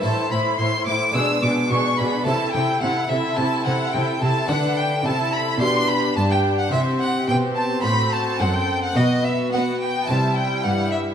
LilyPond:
<<
  \new Staff \with { instrumentName = "Violin" } { \time 4/4 \key a \dorian \tempo 4 = 108 a''8 b''8 c'''8 d'''8 e'''8 d'''8 cis'''8 b''8 | a''8 g''8 fis''8 e''8 a''8 fis''8 g''8 a''8 | fis''8 g''8 a''8 b''8 c'''8 b''8 a''16 g''8 fis''16 | e''8 fis''8 g''8 a''8 b''8 a''8 fis''16 g''8 fis''16 |
dis''8 e''8 fis''8 g''8 a''8 g''8 fis''8 e''8 | }
  \new Staff \with { instrumentName = "Violin section" } { \time 4/4 \key a \dorian a''8 b''8 c'''8 d'''8 e'''8 d'''8 cis'''8 b''8 | a''8 g''8 fis''8 e''8 a''8 fis''8 g''8 a''8 | fis''8 g''8 a''8 b''8 c'''8 b''8 a''16 g''8 fis''16 | e''8 fis''8 g''8 a''8 b''8 a''8 fis''16 g''8 fis''16 |
dis''8 e''8 fis''8 g''8 a''8 g''8 fis''8 e''8 | }
  \new Staff \with { instrumentName = "Violin section" } { \time 4/4 \key a \dorian c''8 c''8 c''8 c''8 gis'8 gis'8 gis'8 gis'8 | a'8 a'8 a'8 a'8 a'8 a'8 a'8 a'8 | b'4 a'4 g'4 g'4 | g'2 fis'4 a'4 |
fis'2 e'4 e'4 | }
  \new Staff \with { instrumentName = "Viola section" } { \time 4/4 \key a \dorian e'8 e'8 e'8 e'8 d'8 d'8 d'8 d'8 | e'8 e'8 e'8 e'8 e'8 e'8 e'8 e'8 | d'4 e'4 d'4 d'4 | c'4 c'2. |
b2 g2 | }
  \new Staff \with { instrumentName = "Harpsichord" } { \time 4/4 \key a \dorian <a e' c''>2 <gis d' b'>2 | <a e' a'>1 | <a d' a'>2 <d' d''>2 | <e' c''>2 <fis' c''>2 |
<b fis' b'>2 <e' e''>2 | }
  \new Staff \with { instrumentName = "Harpsichord" } { \clef bass \time 4/4 \key a \dorian a,8 a,8 a,8 a,8 b,8 b,8 b,8 b,8 | c8 c8 c8 c8 c8 c8 c8 c8 | d4 c4 b,4 g,4 | c4 b,4 a,4 fis,4 |
b,4 b4 c4 g,4 | }
  \new Staff \with { instrumentName = "Cello section" } { \clef bass \time 4/4 \key a \dorian a,8 a,8 a,8 a,8 b,8 b,8 b,8 b,8 | c8 c8 c8 c8 c8 c8 c8 c8 | d4 c4 b,4 g,4 | c4 b,4 a,4 fis,4 |
b,4 b4 c4 g,4 | }
>>